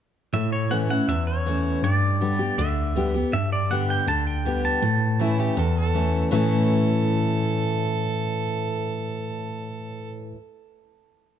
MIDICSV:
0, 0, Header, 1, 5, 480
1, 0, Start_track
1, 0, Tempo, 374065
1, 432, Time_signature, 4, 2, 24, 8
1, 14619, End_track
2, 0, Start_track
2, 0, Title_t, "Pedal steel guitar"
2, 0, Program_c, 0, 26
2, 432, Note_on_c, 0, 76, 77
2, 668, Note_off_c, 0, 76, 0
2, 674, Note_on_c, 0, 73, 69
2, 910, Note_on_c, 0, 78, 79
2, 921, Note_off_c, 0, 73, 0
2, 976, Note_off_c, 0, 78, 0
2, 1160, Note_on_c, 0, 78, 67
2, 1381, Note_off_c, 0, 78, 0
2, 1395, Note_on_c, 0, 76, 77
2, 1618, Note_off_c, 0, 76, 0
2, 1630, Note_on_c, 0, 73, 72
2, 2354, Note_off_c, 0, 73, 0
2, 2359, Note_on_c, 0, 74, 90
2, 3309, Note_off_c, 0, 74, 0
2, 3314, Note_on_c, 0, 76, 74
2, 3984, Note_off_c, 0, 76, 0
2, 4278, Note_on_c, 0, 76, 88
2, 4499, Note_off_c, 0, 76, 0
2, 4524, Note_on_c, 0, 74, 77
2, 4758, Note_on_c, 0, 78, 83
2, 4759, Note_off_c, 0, 74, 0
2, 5003, Note_off_c, 0, 78, 0
2, 5008, Note_on_c, 0, 79, 80
2, 5234, Note_off_c, 0, 79, 0
2, 5239, Note_on_c, 0, 81, 92
2, 5472, Note_off_c, 0, 81, 0
2, 5477, Note_on_c, 0, 79, 79
2, 5921, Note_off_c, 0, 79, 0
2, 5965, Note_on_c, 0, 81, 103
2, 7583, Note_off_c, 0, 81, 0
2, 14619, End_track
3, 0, Start_track
3, 0, Title_t, "Fiddle"
3, 0, Program_c, 1, 110
3, 6673, Note_on_c, 1, 64, 74
3, 6923, Note_on_c, 1, 67, 67
3, 6942, Note_off_c, 1, 64, 0
3, 7166, Note_on_c, 1, 69, 64
3, 7185, Note_off_c, 1, 67, 0
3, 7390, Note_off_c, 1, 69, 0
3, 7407, Note_on_c, 1, 69, 88
3, 7979, Note_off_c, 1, 69, 0
3, 8115, Note_on_c, 1, 69, 78
3, 12925, Note_off_c, 1, 69, 0
3, 14619, End_track
4, 0, Start_track
4, 0, Title_t, "Steel-string acoustic guitar"
4, 0, Program_c, 2, 25
4, 426, Note_on_c, 2, 45, 84
4, 904, Note_on_c, 2, 52, 52
4, 910, Note_on_c, 2, 57, 61
4, 920, Note_on_c, 2, 61, 56
4, 926, Note_on_c, 2, 64, 61
4, 1135, Note_off_c, 2, 64, 0
4, 1140, Note_off_c, 2, 52, 0
4, 1143, Note_off_c, 2, 57, 0
4, 1148, Note_off_c, 2, 61, 0
4, 1151, Note_on_c, 2, 64, 51
4, 1173, Note_on_c, 2, 61, 41
4, 1343, Note_off_c, 2, 45, 0
4, 1383, Note_off_c, 2, 64, 0
4, 1394, Note_off_c, 2, 61, 0
4, 1400, Note_on_c, 2, 40, 88
4, 1876, Note_on_c, 2, 52, 52
4, 1883, Note_on_c, 2, 57, 55
4, 1892, Note_on_c, 2, 61, 58
4, 1898, Note_on_c, 2, 64, 58
4, 2310, Note_off_c, 2, 40, 0
4, 2332, Note_off_c, 2, 52, 0
4, 2336, Note_off_c, 2, 57, 0
4, 2340, Note_off_c, 2, 61, 0
4, 2343, Note_off_c, 2, 64, 0
4, 2359, Note_on_c, 2, 43, 89
4, 2832, Note_on_c, 2, 50, 51
4, 2840, Note_on_c, 2, 55, 59
4, 2845, Note_on_c, 2, 59, 58
4, 2851, Note_on_c, 2, 67, 61
4, 3053, Note_off_c, 2, 67, 0
4, 3065, Note_off_c, 2, 50, 0
4, 3068, Note_off_c, 2, 55, 0
4, 3068, Note_on_c, 2, 67, 56
4, 3071, Note_off_c, 2, 59, 0
4, 3093, Note_on_c, 2, 59, 39
4, 3269, Note_off_c, 2, 43, 0
4, 3303, Note_off_c, 2, 67, 0
4, 3315, Note_off_c, 2, 59, 0
4, 3320, Note_on_c, 2, 50, 89
4, 3779, Note_off_c, 2, 50, 0
4, 3794, Note_on_c, 2, 50, 52
4, 3803, Note_on_c, 2, 55, 53
4, 3805, Note_on_c, 2, 59, 60
4, 3816, Note_on_c, 2, 67, 60
4, 4016, Note_off_c, 2, 67, 0
4, 4025, Note_off_c, 2, 50, 0
4, 4029, Note_off_c, 2, 55, 0
4, 4031, Note_off_c, 2, 59, 0
4, 4031, Note_on_c, 2, 67, 51
4, 4052, Note_on_c, 2, 59, 42
4, 4263, Note_off_c, 2, 67, 0
4, 4274, Note_off_c, 2, 59, 0
4, 4276, Note_on_c, 2, 43, 75
4, 4754, Note_on_c, 2, 50, 51
4, 4764, Note_on_c, 2, 55, 51
4, 4770, Note_on_c, 2, 59, 57
4, 4775, Note_on_c, 2, 67, 61
4, 5186, Note_off_c, 2, 43, 0
4, 5209, Note_off_c, 2, 50, 0
4, 5214, Note_off_c, 2, 55, 0
4, 5217, Note_off_c, 2, 59, 0
4, 5220, Note_off_c, 2, 67, 0
4, 5228, Note_on_c, 2, 50, 79
4, 5698, Note_off_c, 2, 50, 0
4, 5713, Note_on_c, 2, 50, 52
4, 5723, Note_on_c, 2, 55, 55
4, 5725, Note_on_c, 2, 59, 55
4, 5735, Note_on_c, 2, 67, 62
4, 6168, Note_off_c, 2, 50, 0
4, 6173, Note_off_c, 2, 55, 0
4, 6174, Note_off_c, 2, 59, 0
4, 6179, Note_off_c, 2, 67, 0
4, 6190, Note_on_c, 2, 45, 91
4, 6666, Note_on_c, 2, 52, 51
4, 6677, Note_on_c, 2, 57, 54
4, 6685, Note_on_c, 2, 61, 64
4, 6694, Note_on_c, 2, 64, 58
4, 7100, Note_off_c, 2, 45, 0
4, 7123, Note_off_c, 2, 52, 0
4, 7128, Note_off_c, 2, 57, 0
4, 7132, Note_off_c, 2, 61, 0
4, 7137, Note_off_c, 2, 64, 0
4, 7148, Note_on_c, 2, 40, 88
4, 7623, Note_on_c, 2, 52, 48
4, 7631, Note_on_c, 2, 57, 51
4, 7637, Note_on_c, 2, 61, 57
4, 7643, Note_on_c, 2, 64, 51
4, 8058, Note_off_c, 2, 40, 0
4, 8080, Note_off_c, 2, 52, 0
4, 8085, Note_off_c, 2, 57, 0
4, 8088, Note_off_c, 2, 61, 0
4, 8091, Note_off_c, 2, 64, 0
4, 8096, Note_on_c, 2, 45, 80
4, 8107, Note_on_c, 2, 52, 85
4, 8114, Note_on_c, 2, 57, 91
4, 8122, Note_on_c, 2, 61, 80
4, 8131, Note_on_c, 2, 64, 94
4, 13278, Note_off_c, 2, 45, 0
4, 13289, Note_off_c, 2, 52, 0
4, 13296, Note_off_c, 2, 57, 0
4, 13304, Note_off_c, 2, 61, 0
4, 13313, Note_off_c, 2, 64, 0
4, 14619, End_track
5, 0, Start_track
5, 0, Title_t, "Tine electric piano"
5, 0, Program_c, 3, 4
5, 423, Note_on_c, 3, 45, 89
5, 1267, Note_off_c, 3, 45, 0
5, 1384, Note_on_c, 3, 40, 68
5, 2227, Note_off_c, 3, 40, 0
5, 2344, Note_on_c, 3, 43, 82
5, 3187, Note_off_c, 3, 43, 0
5, 3309, Note_on_c, 3, 38, 83
5, 4149, Note_off_c, 3, 38, 0
5, 4273, Note_on_c, 3, 43, 84
5, 5110, Note_off_c, 3, 43, 0
5, 5232, Note_on_c, 3, 38, 69
5, 6068, Note_off_c, 3, 38, 0
5, 6190, Note_on_c, 3, 45, 83
5, 7026, Note_off_c, 3, 45, 0
5, 7145, Note_on_c, 3, 40, 81
5, 7983, Note_off_c, 3, 40, 0
5, 8107, Note_on_c, 3, 45, 78
5, 13238, Note_off_c, 3, 45, 0
5, 14619, End_track
0, 0, End_of_file